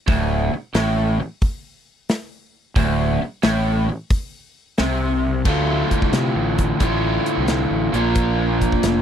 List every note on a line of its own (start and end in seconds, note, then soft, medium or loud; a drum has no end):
0.08 0.50 D1 medium
0.08 0.52 D2 loud
0.08 kick loud
0.08 open hi-hat soft
0.54 muted fingered electric bass stroke soft
0.54 muted overdriven electric guitar stroke medium
0.75 1.17 A1 medium
0.75 1.19 A2 medium
0.75 snare loud
0.75 open hi-hat medium
1.20 muted overdriven electric guitar stroke medium
1.20 muted fingered electric bass stroke soft
1.42 kick medium
1.42 open hi-hat medium
2.09 snare loud
2.09 open hi-hat soft
2.76 3.18 D1 medium
2.76 3.21 D2 loud
2.76 kick medium
2.76 open hi-hat medium
3.22 muted overdriven electric guitar stroke medium
3.22 muted fingered electric bass stroke soft
3.43 3.86 A1 medium
3.43 3.88 A2 medium
3.43 snare loud
3.43 open hi-hat medium
3.90 muted overdriven electric guitar stroke medium
3.90 muted fingered electric bass stroke soft
4.10 kick loud
4.10 open hi-hat medium
4.78 5.42 C2 medium
4.78 5.45 C3 medium
4.78 snare medium
4.78 open hi-hat medium
5.45 6.79 D2 medium
5.45 5.83 D2 medium
5.45 6.80 A2 medium
5.45 6.80 D3 medium
5.45 6.80 A3 medium
5.45 6.83 F4 medium
5.45 kick medium
5.45 crash medium
5.91 kick medium
5.91 closed hi-hat medium
6.02 kick medium
6.12 6.31 C3 medium
6.12 snare loud
6.12 closed hi-hat medium
6.36 6.72 A1 medium
6.58 kick medium
6.58 closed hi-hat medium
6.80 7.18 A1 medium
6.80 7.91 D2 medium
6.80 7.91 A2 medium
6.80 7.92 D3 medium
6.80 7.92 A3 medium
6.80 7.96 F4 medium
6.80 kick medium
6.80 closed hi-hat medium
7.26 closed hi-hat medium
7.38 7.65 C2 medium
7.48 snare loud
7.48 closed hi-hat medium
7.71 7.89 A1 medium
7.93 8.66 A#1 medium
7.93 9.02 A#2 medium
7.93 9.02 F3 medium
7.93 9.02 A#3 medium
7.93 9.02 D4 medium
7.93 9.02 F4 medium
7.93 9.02 A#4 medium
7.93 closed hi-hat medium
8.15 kick loud
8.15 closed hi-hat medium
8.61 kick medium
8.61 closed hi-hat medium
8.72 kick medium
8.83 9.02 F1 medium
8.83 snare loud
8.83 closed hi-hat medium